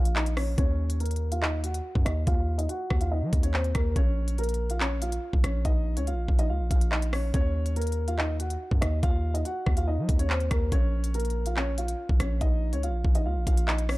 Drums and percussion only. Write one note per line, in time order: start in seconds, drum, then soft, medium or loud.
0.05 closed hi-hat medium
0.16 clap loud
0.26 closed hi-hat medium
0.37 cross-stick loud
0.37 open hi-hat medium
0.58 kick loud
0.58 closed hi-hat medium
0.90 closed hi-hat medium
1.00 closed hi-hat medium
1.06 closed hi-hat medium
1.11 closed hi-hat medium
1.16 closed hi-hat medium
1.32 closed hi-hat medium
1.43 clap loud
1.64 closed hi-hat loud
1.74 closed hi-hat medium
1.95 kick medium
2.06 cross-stick loud
2.06 closed hi-hat medium
2.27 kick loud
2.27 closed hi-hat medium
2.59 closed hi-hat medium
2.69 closed hi-hat medium
2.90 kick medium
2.90 cross-stick loud
3.01 closed hi-hat medium
3.33 kick medium
3.33 closed hi-hat loud
3.43 closed hi-hat medium
3.54 clap loud
3.64 closed hi-hat soft
3.75 kick medium
3.75 cross-stick loud
3.75 closed hi-hat medium
3.96 kick loud
3.96 closed hi-hat medium
4.28 closed hi-hat medium
4.38 closed hi-hat medium
4.44 closed hi-hat medium
4.49 closed hi-hat medium
4.54 closed hi-hat medium
4.70 closed hi-hat medium
4.80 clap loud
5.02 closed hi-hat loud
5.12 closed hi-hat medium
5.33 kick medium
5.44 cross-stick loud
5.44 closed hi-hat medium
5.65 kick loud
5.65 closed hi-hat medium
5.97 closed hi-hat medium
6.07 closed hi-hat medium
6.28 kick medium
6.39 closed hi-hat medium
6.71 kick medium
6.71 closed hi-hat loud
6.81 closed hi-hat medium
6.92 clap loud
7.02 closed hi-hat medium
7.13 cross-stick loud
7.13 open hi-hat medium
7.34 kick loud
7.34 closed hi-hat medium
7.66 closed hi-hat medium
7.76 closed hi-hat medium
7.82 closed hi-hat medium
7.87 closed hi-hat medium
7.92 closed hi-hat medium
8.08 closed hi-hat medium
8.19 clap loud
8.40 closed hi-hat loud
8.50 closed hi-hat medium
8.71 kick medium
8.82 cross-stick loud
8.82 closed hi-hat medium
9.03 kick loud
9.03 closed hi-hat medium
9.35 closed hi-hat medium
9.45 closed hi-hat medium
9.66 kick loud
9.66 cross-stick medium
9.77 closed hi-hat medium
10.09 kick medium
10.09 closed hi-hat loud
10.19 closed hi-hat medium
10.30 clap loud
10.40 closed hi-hat soft
10.51 kick loud
10.51 cross-stick loud
10.51 closed hi-hat medium
10.72 kick loud
10.72 closed hi-hat medium
11.04 closed hi-hat medium
11.14 closed hi-hat medium
11.20 closed hi-hat medium
11.25 closed hi-hat medium
11.30 closed hi-hat medium
11.46 closed hi-hat medium
11.57 clap loud
11.78 closed hi-hat medium
11.88 closed hi-hat medium
12.09 kick medium
12.20 cross-stick loud
12.20 closed hi-hat medium
12.41 kick loud
12.41 closed hi-hat medium
12.73 closed hi-hat medium
12.83 closed hi-hat medium
13.05 kick medium
13.15 closed hi-hat medium
13.47 kick medium
13.47 closed hi-hat loud
13.57 closed hi-hat medium
13.68 clap loud
13.78 closed hi-hat medium
13.89 cross-stick loud
13.89 open hi-hat medium